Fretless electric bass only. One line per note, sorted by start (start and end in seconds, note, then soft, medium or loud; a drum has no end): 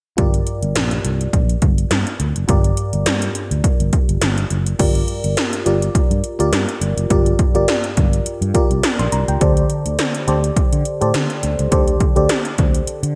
0.18 0.40 G1 medium
0.63 0.72 G1 medium
0.76 0.97 A#1 medium
1.04 1.26 C2 medium
1.33 1.55 A#1 medium
1.62 1.84 G1 medium
1.91 2.03 G2 medium
2.20 2.32 D2 medium
2.36 2.46 F#1 medium
2.49 2.70 G1 medium
2.93 3.03 G1 medium
3.06 3.28 G2 medium
3.51 3.61 D2 medium
3.80 3.90 G1 medium
4.09 4.19 G1 medium
4.22 4.43 G1 medium
4.51 4.72 F#1 medium
4.80 5.01 G1 medium
5.24 5.34 G1 medium
5.66 5.88 G1 medium
5.95 muted fretless electric bass stroke soft
6.11 6.21 G2 medium
6.40 6.49 D2 medium
6.52 6.64 G2 medium
6.81 6.93 G1 medium
6.97 7.07 F#1 medium
7.11 7.32 G1 medium
7.55 7.65 G1 medium
7.97 8.19 G1 medium
8.26 muted fretless electric bass stroke soft
8.41 8.51 G2 medium
8.70 8.80 C2 medium
8.99 9.09 A#1 medium
9.12 9.24 C2 medium
9.28 9.38 C#2 medium
9.41 9.63 D2 medium
9.86 9.96 D2 medium
10.28 10.49 D2 medium
10.57 muted fretless electric bass stroke soft
10.73 10.82 D3 medium
11.02 11.11 A2 medium
11.14 11.26 D3 medium
11.43 11.55 D2 medium
11.59 11.69 C#2 medium
11.72 11.94 D2 medium
12.17 12.26 D2 medium
12.59 12.80 D2 medium
12.87 muted fretless electric bass stroke soft
13.03 13.13 D3 medium